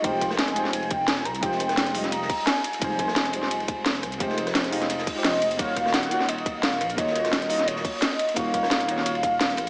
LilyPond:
<<
  \new Staff \with { instrumentName = "Soft synth lead" } { \time 4/4 \key f \minor \tempo 4 = 173 g''4 aes''4 aes''8 g''8 aes''8 bes''8 | g''2 bes''4 aes''4 | aes''2. r4 | r2. ees''4 |
f''4 ges''4 ees''4 f''4 | ees''4. ees''8 des''4 ees''4 | f''1 | }
  \new Staff \with { instrumentName = "Synth stab" } { \time 4/4 \key f \minor <aes ees' f' g' c''>4. <aes ees' f' g' c''>2~ <aes ees' f' g' c''>8 | <aes ees' f' g' c''>4. <g aes ees' f' ees''>2~ <g aes ees' f' ees''>8 | <g aes ees' f' c''>4. <g aes ees' f' c''>2~ <g aes ees' f' c''>8 | <aes ees' f' g' c''>4. <aes ees' f' g' ees''>4~ <aes ees' f' g' ees''>16 <aes ees' f' g' c''>4~ <aes ees' f' g' c''>16 |
<bes ees' f' ges' des''>4. <bes ees' f' ges' des''>2~ <bes ees' f' ges' des''>8 | <bes ees' f' ges' des''>4. <bes ees' f' ges' ees''>2~ <bes ees' f' ges' ees''>8 | <bes ees' f' ges' des''>4. <bes ees' f' ges' des''>2~ <bes ees' f' ges' des''>8 | }
  \new Staff \with { instrumentName = "Detuned saw bass" } { \clef bass \time 4/4 \key f \minor f,,2~ f,,8 f,,4 c,8 | f,,2~ f,,8 r4. | f,,2~ f,,8 f,,4 c,8 | f,,2~ f,,8 r8 f,,8. aes,,16 |
ees,,2~ ees,,8 ees,,4 bes,,8 | ees,,2~ ees,,8 r4. | ees,,2~ ees,,8 ees,,4 bes,,8 | }
  \new DrumStaff \with { instrumentName = "Drums" } \drummode { \time 4/4 <hh bd cymr>8 <hh bd cymr ss>16 <ss sn>16 <hh cymr sn>16 <hh cymr ss>16 <hh cymr>16 sn16 <hh cymr>16 cymr16 <hh bd cymr>8 <hh cymr sn>16 sn16 <hh cymr ss>16 <hh cymr>16 | <hh bd cymr>16 sn16 <hh cymr ss>16 <hh ss sn>16 <hh cymr sn>16 <hh ss>16 <hho cymr>16 <hh sn>16 <hh cymr>16 sn16 <hh hho bd>8 <hh cymr sn>8 <hh cymr>16 <hh cymr>16 | <hh bd cymr>8 <hh bd cymr ss>16 <ss sn>16 <hh cymr sn>16 <hh cymr ss>16 <hh cymr>16 sn16 <hh cymr>16 cymr16 <hh bd cymr>8 <hh cymr sn>16 sn16 <hh cymr ss>16 <hh cymr>16 | <hh bd cymr>16 sn16 <hh cymr ss>16 <hh ss sn>16 <hh cymr sn>16 <hh ss>16 <hho cymr>16 <hh sn>16 <hh cymr>16 sn16 <hh hho bd>8 <hh cymr sn>8 <hh cymr>16 <hh cymr>16 |
<hh bd cymr>8 <hh bd cymr ss>16 <ss sn>16 <hh cymr sn>16 <hh cymr ss>16 <hh cymr>16 sn16 <hh cymr>16 cymr16 <hh bd cymr>8 <hh cymr sn>16 sn16 <hh cymr ss>16 <hh cymr>16 | <hh bd cymr>16 sn16 <hh cymr ss>16 <hh ss sn>16 <hh cymr sn>16 <hh ss>16 <hho cymr>16 <hh sn>16 <hh cymr>16 sn16 <hh hho bd>8 <hh cymr sn>8 <hh cymr>16 <hh cymr>16 | <hh bd cymr>8 <hh bd cymr ss>16 <ss sn>16 <hh cymr sn>16 <hh cymr ss>16 <hh cymr>16 sn16 <hh cymr>16 cymr16 <hh bd cymr>8 <hh cymr sn>16 sn16 <hh cymr ss>8 | }
>>